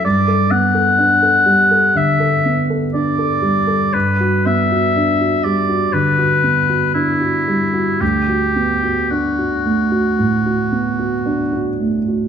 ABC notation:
X:1
M:4/4
L:1/16
Q:1/4=59
K:Glyd
V:1 name="Oboe"
d2 f6 e2 z2 d4 | B2 e4 d2 B4 E4 | G4 F8- F2 z2 |]
V:2 name="Grand piano"
G,, A B, A D A G, A D, A B, A D A G, A | G,, F B, F D F G, F D, F B, F D F G, F | D,, F B, F D F A, F A,, F B, F D F A, F |]